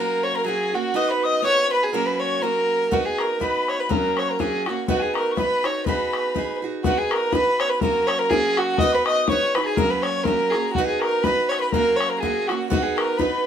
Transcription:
Already playing: steel-string acoustic guitar F#3 A#3, fiddle A#4, tin whistle A#5
0.00 steel-string acoustic guitar C#4 F#4
0.24 fiddle C#5, tin whistle C#6
0.35 fiddle A#4, tin whistle A#5
0.44 steel-string acoustic guitar F#3 A#3 C#4 F#4, fiddle G#4, tin whistle G#5
0.73 steel-string acoustic guitar A#3 C#4 F#4, fiddle F#4, tin whistle F#5
0.94 steel-string acoustic guitar B3 D#4 F#4 B4, fiddle D#5, tin whistle D#6
1.09 fiddle B4, tin whistle B5
1.23 fiddle D#5, tin whistle D#6
1.39 steel-string acoustic guitar B3, tin whistle D#6
1.43 steel-string acoustic guitar D#4 F#4 B4, fiddle C#5, tin whistle C#6
1.71 fiddle B4, tin whistle B5
1.84 fiddle G#4, tin whistle G#5
1.93 steel-string acoustic guitar F#3 A#3 C#4 F#4, fiddle A#4, tin whistle A#5
2.06 fiddle B4, tin whistle B5
2.19 fiddle C#5, tin whistle C#6
2.42 steel-string acoustic guitar F#3 A#3 C#4 F#4, fiddle A#4, tin whistle A#5
2.90 steel-string acoustic guitar B3 D#4 F#4 B4, fiddle F#4, tin whistle F#5, bodhran
3.05 fiddle G#4, tin whistle G#5
3.18 fiddle A#4, tin whistle A#5, bodhran
3.40 steel-string acoustic guitar B3 D#4 F#4 B4, tin whistle B5, bodhran
3.44 fiddle B4
3.68 fiddle C#5, bodhran
3.79 fiddle B4, tin whistle B5
3.89 steel-string acoustic guitar F#3 A#3 C#4 F#4, fiddle A#4, tin whistle A#5, bodhran
4.17 fiddle C#5, tin whistle C#6, bodhran
4.29 fiddle A#4, tin whistle A#5
4.39 steel-string acoustic guitar F#3 A#3 C#4 F#4, fiddle G#4, tin whistle G#5, bodhran
4.66 steel-string acoustic guitar A#3 C#4 F#4, fiddle F#4, tin whistle F#5, bodhran
4.87 steel-string acoustic guitar B3 D#4 F#4 B4, fiddle F#4, tin whistle F#5, bodhran
5.00 fiddle G#4, tin whistle G#5
5.14 fiddle A#4, tin whistle A#5, bodhran
5.31 tin whistle C#6
5.37 steel-string acoustic guitar B3 D#4 F#4 B4, fiddle B4, tin whistle B5, bodhran
5.63 steel-string acoustic guitar D#4 F#4 B4, fiddle C#5, bodhran
5.86 steel-string acoustic guitar B3 D#4 F#4 G#4, fiddle B4, tin whistle B5, bodhran
6.13 bodhran
6.35 steel-string acoustic guitar B3 D#4 F#4 G#4, bodhran
6.62 steel-string acoustic guitar D#4 F#4 G#4
6.84 steel-string acoustic guitar B3 D#4 F#4 B4, fiddle F#4, tin whistle F#5, bodhran
6.97 fiddle G#4, tin whistle G#5
7.11 fiddle A#4, tin whistle A#5, bodhran
7.32 steel-string acoustic guitar B3 D#4 F#4 B4, fiddle B4, tin whistle B5, bodhran
7.59 fiddle C#5, tin whistle C#6, bodhran
7.70 fiddle B4, tin whistle B5
7.80 steel-string acoustic guitar F#3 A#3 C#4, fiddle A#4, tin whistle A#5, bodhran
7.84 steel-string acoustic guitar F#4
8.07 fiddle C#5, tin whistle C#6, bodhran
8.19 fiddle A#4, tin whistle A#5
8.31 steel-string acoustic guitar F#3 A#3 C#4 F#4, fiddle G#4, tin whistle G#5, bodhran
8.56 fiddle F#4, tin whistle F#5, bodhran
8.78 steel-string acoustic guitar B3 D#4, fiddle D#5, tin whistle D#6, bodhran
8.82 steel-string acoustic guitar F#4 B4
8.93 fiddle B4, tin whistle B5
9.06 fiddle D#5, tin whistle D#6, bodhran
9.28 steel-string acoustic guitar B3 D#4 F#4, fiddle C#5, tin whistle C#6, bodhran
9.32 steel-string acoustic guitar B4
9.55 steel-string acoustic guitar D#4 F#4 B4, fiddle B4, tin whistle B5, bodhran
9.65 fiddle G#4, tin whistle G#5
9.77 steel-string acoustic guitar F#3 A#3 C#4 F#4, fiddle A#4, tin whistle A#5, bodhran
9.90 fiddle B4, tin whistle B5
10.02 fiddle C#5, tin whistle C#6, bodhran
10.24 steel-string acoustic guitar F#3 A#3 C#4, fiddle A#4, tin whistle A#5, bodhran
10.29 steel-string acoustic guitar F#4
10.50 steel-string acoustic guitar F#4, fiddle G#4, bodhran
10.55 steel-string acoustic guitar A#3 C#4
10.73 fiddle F#4, tin whistle F#5, bodhran
10.78 steel-string acoustic guitar B3 D#4 F#4 B4
10.87 fiddle G#4, tin whistle G#5
11.00 fiddle A#4, tin whistle A#5, bodhran
11.23 steel-string acoustic guitar B3 D#4 F#4, fiddle B4, tin whistle B5, bodhran
11.27 steel-string acoustic guitar B4
11.49 fiddle C#5, tin whistle C#6, bodhran
11.61 fiddle B4, tin whistle B5
11.71 steel-string acoustic guitar F#3 A#3 C#4, fiddle A#4, tin whistle A#5, bodhran
11.75 steel-string acoustic guitar F#4
11.96 fiddle C#5, tin whistle C#6
12.01 bodhran
12.09 fiddle A#4, tin whistle A#5
12.19 steel-string acoustic guitar F#3 A#3, fiddle G#4, tin whistle G#5, bodhran
12.24 steel-string acoustic guitar C#4 F#4
12.47 steel-string acoustic guitar A#3 C#4 F#4, fiddle F#4, tin whistle F#5, bodhran
12.70 steel-string acoustic guitar B3 D#4 F#4 B4, fiddle F#4, tin whistle F#5, bodhran
12.82 fiddle G#4
12.96 fiddle A#4, tin whistle A#5, bodhran
13.17 steel-string acoustic guitar B3 D#4 F#4 B4, fiddle B4, tin whistle B5, bodhran

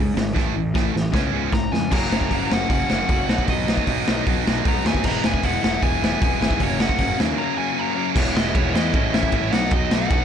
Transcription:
Already playing: picked electric bass G#2
0.00 distorted electric guitar C#3 G#3
0.16 picked electric bass G#1, distorted electric guitar C#3 G#3, snare
0.34 picked electric bass A1, distorted electric guitar A2 E3 A3, kick, snare
0.56 picked electric bass A1, distorted electric guitar A2 E3
0.75 picked electric bass A1, distorted electric guitar A2 E3 A3, kick, snare
0.94 picked electric bass A1, distorted electric guitar A2 E3, snare
1.13 picked electric bass C#2, distorted electric guitar C#3 G#3 C#4, overdriven electric guitar B3, kick, snare
1.32 picked electric bass C#2, distorted electric guitar C#3 G#3 C#4, overdriven electric guitar B3
1.53 picked electric bass G#1, distorted electric guitar C#3 G#3, lead electric guitar A#5, kick, snare
1.72 picked electric bass F2, distorted electric guitar C#3 G#3, lead electric guitar G#5, snare
1.90 picked electric bass F#1, distorted electric guitar F#2 C#3 F#3 A#3 C#4 F#4, lead electric guitar A#5, kick, crash
2.10 picked electric bass F#1, distorted electric guitar F#2 C#3 F#3 A#3 C#4 F#4, snare
2.21 kick
2.30 picked electric bass F#1, distorted electric guitar F#2 C#3 F#3 A#3 C#4 F#4, kick, open hi-hat
2.48 picked electric bass F#1, distorted electric guitar F#2 C#3 F#3 A#3 C#4 F#4, snare
2.53 lead electric guitar F#5
2.68 picked electric bass F#1, distorted electric guitar F#2 C#3 F#3 A#3 C#4 F#4, kick, open hi-hat
2.72 lead electric guitar F#5
2.87 picked electric bass F#1, distorted electric guitar F#2 C#3 F#3 A#3 C#4 F#4, snare
3.08 picked electric bass F#1, distorted electric guitar F#2 C#3 F#3 A#3 C#4 F#4, kick, open hi-hat
3.28 picked electric bass B1, distorted electric guitar B2 F#3 B3 D#4, snare
3.38 kick
3.47 picked electric bass B1, distorted electric guitar B2 F#3 B3 D#4, lead electric guitar D#5, kick, open hi-hat
3.66 distorted electric guitar B2 F#3 B3 D#4, snare
3.77 kick
3.87 picked electric bass B1, distorted electric guitar B2 F#3 B3 D#4, kick, open hi-hat
4.07 picked electric bass B1, distorted electric guitar B2 F#3 B3 D#4, snare
4.27 picked electric bass B1, distorted electric guitar B2 F#3 B3 D#4, kick, open hi-hat
4.47 picked electric bass B1, distorted electric guitar B2 F#3 B3 D#4, snare
4.65 picked electric bass G#2, distorted electric guitar B2 F#3 B3 D#4, lead electric guitar A#5, kick, open hi-hat
4.85 picked electric bass D#2, distorted electric guitar B2 F#3 B3 D#4, lead electric guitar G#5, snare
4.95 kick
5.03 picked electric bass E1, overdriven electric guitar E3 G#3 B3, lead electric guitar A#5, kick, crash
5.07 distorted electric guitar E3 G#3 B3 E4
5.24 picked electric bass E1, distorted electric guitar E3 G#3 B3 E4, lead electric guitar G#5, snare
5.34 kick
5.43 picked electric bass E1, distorted electric guitar E3 G#3 B3 E4, lead electric guitar F#5, kick, open hi-hat
5.63 picked electric bass E1, distorted electric guitar E3 G#3 B3 E4, lead electric guitar F#5, snare
5.82 picked electric bass E1, distorted electric guitar E3 G#3 B3 E4, lead electric guitar G#5, kick, open hi-hat
6.02 picked electric bass E1, distorted electric guitar E3 G#3 B3 E4, snare
6.21 picked electric bass E1, distorted electric guitar E3 G#3 B3 E4, kick, open hi-hat
6.40 picked electric bass G#1, distorted electric guitar E3 G#3 B3 E4, lead electric guitar G#5, snare
6.51 kick
6.60 picked electric bass F#1, distorted electric guitar F#2 C#3 F#3 A#3 C#4, lead electric guitar C#5, kick, open hi-hat
6.80 distorted electric guitar F#2 C#3 F#3 A#3 C#4, lead electric guitar F#5, snare
6.89 kick
6.98 picked electric bass F#1, distorted electric guitar F#2 C#3 F#3 A#3 C#4, kick, open hi-hat
7.19 picked electric bass D#2, distorted electric guitar F#2 C#3 F#3 A#3 C#4, snare
7.36 distorted electric guitar F#2, overdriven electric guitar C#3 F#3, lead electric guitar A#5
7.40 distorted electric guitar C#3 F#3 A#3 C#4
7.58 distorted electric guitar F#2 C#3 F#3 A#3 C#4, lead electric guitar G#5
7.75 distorted electric guitar F#2 C#3 F#3 A#3 C#4
7.79 lead electric guitar A#5
7.95 distorted electric guitar F#2 C#3 F#3 A#3 C#4
8.15 picked electric bass E1, distorted electric guitar E3 G#3 B3 E4, lead electric guitar C#5, kick, crash
8.35 picked electric bass E1, distorted electric guitar E3 G#3 B3 E4, lead electric guitar D#5, snare
8.55 picked electric bass E1, distorted electric guitar E3 G#3 B3 E4, lead electric guitar C#5, kick, ride
8.75 picked electric bass E2, distorted electric guitar E3 G#3 B3 E4, lead electric guitar D#5, snare
8.93 picked electric bass A1, distorted electric guitar A2 E3 A3 C#4 E4, lead electric guitar D#5, kick, ride
9.13 picked electric bass A1, distorted electric guitar A2 E3 A3 C#4 E4, lead electric guitar E5, snare
9.23 kick
9.32 picked electric bass A1, distorted electric guitar A2 E3 A3 C#4 E4, kick, ride
9.53 picked electric bass B1, distorted electric guitar B2 F#3 B3 D#4, lead electric guitar F#5, snare
9.71 picked electric bass B1, distorted electric guitar B2 F#3 B3, lead electric guitar D#5, kick, ride
9.75 distorted electric guitar D#4
9.91 picked electric bass B1, distorted electric guitar B2 F#3 B3 D#4, lead electric guitar F#5, snare
10.10 picked electric bass B1, distorted electric guitar B2 F#3 B3 D#4, kick, ride

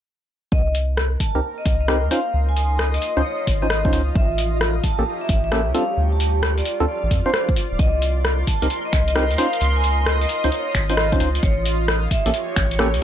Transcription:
0.52 sub bass C2, ambient pad A#4, vibraphone D#5, kick
0.75 open hi-hat
0.95 ambient pad D#5, cross-stick
1.17 vibraphone A5, ambient pad C6, kick, open hi-hat
1.35 sub bass C2, synth stab C4 D#4 G4 A#4
1.58 vibraphone D#5
1.66 sub bass C2, kick, open hi-hat
1.81 vibraphone D#5
1.88 synth stab C4 D#4 G4 A#4, cross-stick
2.03 sub bass D#2
2.11 synth stab C#4 D#4 F4 C5, ambient pad F4, vibraphone F5, open hi-hat
2.34 sub bass C#2
2.49 vibraphone G#5
2.56 open hi-hat
2.79 cross-stick
2.94 vibraphone D#5, open hi-hat
3.02 open hi-hat
3.17 sub bass C#2, synth stab C#4 D#4 F4 C5
3.24 vibraphone C#5
3.47 sub bass G#1, kick, open hi-hat
3.62 synth stab C#4 D#4 F4 C5, vibraphone D#5
3.70 cross-stick
3.85 synth stab C#4 D#4 F4 C5, kick
3.93 sub bass C#2, synth stab C#4 D#4 F4 C5, open hi-hat
4.16 sub bass A1, ambient pad G4, vibraphone E5, kick
4.37 ambient pad A#5, open hi-hat
4.58 ambient pad C#5, cross-stick
4.84 vibraphone A5, kick, open hi-hat
4.99 sub bass A1, synth stab A#3 C#4 G4 A4
5.21 vibraphone E5
5.29 sub bass A1, kick, open hi-hat
5.44 vibraphone E5
5.52 synth stab A#3 C#4 G4 A4, cross-stick
5.67 sub bass C#2
5.75 synth stab C4 D4 F4 A4, ambient pad F4, vibraphone F5, open hi-hat
5.90 ambient pad D5
5.97 sub bass D2
6.12 vibraphone A5
6.20 open hi-hat
6.43 cross-stick
6.58 vibraphone D5, open hi-hat
6.65 ambient pad C6, open hi-hat
6.80 sub bass D2, synth stab C4 D4 F4 A4
6.88 vibraphone D5
7.03 sub bass A1
7.11 sub bass F2, kick, open hi-hat
7.26 synth stab C4 D4 F4 C5, vibraphone C5
7.34 cross-stick
7.49 kick
7.56 open hi-hat
7.71 sub bass D1
7.79 sub bass C2, ambient pad A#4, vibraphone D#5, kick, closed hi-hat
8.02 open hi-hat
8.23 ambient pad D#5, cross-stick
8.47 vibraphone A5, kick, open hi-hat
8.62 sub bass C2, synth stab C4 D#4 G4 A#4, closed hi-hat
8.70 closed hi-hat
8.85 vibraphone D#5
8.93 sub bass C2, finger snap, kick, open hi-hat
9.08 vibraphone D#5, closed hi-hat
9.16 synth stab C4 D#4 G4 A#4, cross-stick
9.31 sub bass D#2, closed hi-hat
9.38 synth stab C#4 D#4 F4 C5, ambient pad F4, vibraphone F5, open hi-hat
9.53 closed hi-hat
9.61 sub bass C#2, closed hi-hat
9.76 vibraphone G#5
9.84 open hi-hat
10.06 cross-stick
10.21 vibraphone D#5, open hi-hat
10.29 open hi-hat
10.44 sub bass C#2, synth stab C#4 D#4 F4 C5, closed hi-hat
10.52 vibraphone C#5, closed hi-hat
10.75 sub bass G#1, finger snap, kick, open hi-hat
10.90 synth stab C#4 D#4 F4 C5, vibraphone D#5, closed hi-hat
10.97 cross-stick
11.12 synth stab C#4 D#4 F4 C5, kick, closed hi-hat
11.20 sub bass C#2, synth stab C#4 D#4 F4 C5, open hi-hat
11.35 closed hi-hat
11.43 sub bass A1, ambient pad G4, vibraphone C#5, kick, closed hi-hat
11.53 ambient pad C#5
11.66 open hi-hat
11.88 cross-stick
12.11 vibraphone E5, kick, open hi-hat
12.26 sub bass A1, synth stab A#3 C#4 G4 A4, closed hi-hat
12.34 closed hi-hat
12.49 vibraphone C#5
12.56 sub bass A1, finger snap, kick, open hi-hat
12.71 vibraphone C#5, closed hi-hat
12.79 synth stab A#3 C#4 G4 A4, cross-stick
12.94 sub bass C#2, closed hi-hat

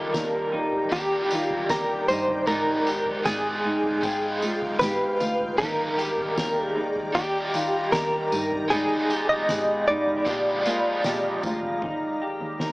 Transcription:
Already playing: overdriven electric guitar D#3 G3 A#3 D4 G4, clean electric guitar G4 A#4, ambient pad G4 D5 G5 A#5
0.13 cello D#2, clean electric guitar A#4, snare, tambourine
0.52 cello D#2, clean electric guitar D#4
0.72 floor tom
0.89 cello D#2, overdriven electric guitar D#3 G3 A#3, clean electric guitar G4, kick, tambourine
0.95 overdriven electric guitar D4 G4
1.31 cello D#3, clean electric guitar F4, tambourine
1.50 floor tom
1.69 cello D#2, clean electric guitar G4 A#4, snare, tambourine
2.08 cello G2, clean electric guitar D#4 C5, tambourine
2.28 floor tom
2.46 overdriven electric guitar G#2 D#3 G#3 B3 F4 G#4, cello G#2, ambient pad G#3 F5, clean electric guitar D#4 A#4, floor tom, tambourine
2.87 clean electric guitar G4, tambourine
3.06 floor tom
3.23 cello G#2, overdriven electric guitar G#3 B3 F4, clean electric guitar G#4, snare, tambourine
3.28 overdriven electric guitar G#4
3.64 cello G#2, clean electric guitar D#4
3.84 floor tom
4.01 overdriven electric guitar G#2 G#3, cello G#2, clean electric guitar G5, kick, tambourine
4.06 overdriven electric guitar B3 F4 G#4
4.42 cello G#3, clean electric guitar F4, tambourine
4.62 floor tom
4.79 cello G#2, clean electric guitar G4 B4, snare, tambourine
5.20 cello D2, clean electric guitar F4, tambourine
5.40 floor tom
5.57 cello D#2, overdriven electric guitar D#3 G3 A#3, clean electric guitar D#4 A#4, ambient pad G4 D5 A#5, kick, floor tom, tambourine
5.62 overdriven electric guitar D4 G4
5.98 clean electric guitar G4, tambourine
6.18 floor tom
6.37 cello D#2, clean electric guitar A#4, snare, tambourine
6.65 clean electric guitar G#4
6.76 cello D#2, clean electric guitar D#4
6.96 floor tom
7.12 cello D#2, overdriven electric guitar D#3 G3 A#3, clean electric guitar G4, kick, tambourine
7.18 overdriven electric guitar D4 G4
7.54 cello D#3, clean electric guitar F4, tambourine
7.92 cello D#2, clean electric guitar G4 A#4, snare, tambourine
8.32 cello G2, clean electric guitar D#4, tambourine
8.52 floor tom
8.68 cello G#2, overdriven electric guitar G#3 B3, clean electric guitar D#4 G#4, floor tom, tambourine
8.73 ambient pad G#3 F5 B5, overdriven electric guitar D#4 F4
9.10 clean electric guitar G4, tambourine
9.29 clean electric guitar D#5, floor tom
9.49 cello G#2, clean electric guitar G#4, snare, tambourine
9.88 cello G#2, clean electric guitar D#4 D5
10.07 floor tom
10.25 overdriven electric guitar A#2 D3 F3 G#3 D4 F4, cello A#2, clean electric guitar G4, ambient pad D5 A#5, kick, tambourine
10.63 overdriven electric guitar G#3 D4 F4, cello A#3, clean electric guitar F4, tambourine
10.67 overdriven electric guitar F3
11.04 cello A#2, clean electric guitar G4, snare, tambourine
11.43 cello D2, clean electric guitar F4, kick, tambourine
11.63 floor tom
11.81 cello D#2, ambient pad D#3 D#4 A#4 G5, clean electric guitar D#4, kick, floor tom
12.22 clean electric guitar G4
12.41 cello D#2
12.60 cello D#2, clean electric guitar A#4, snare

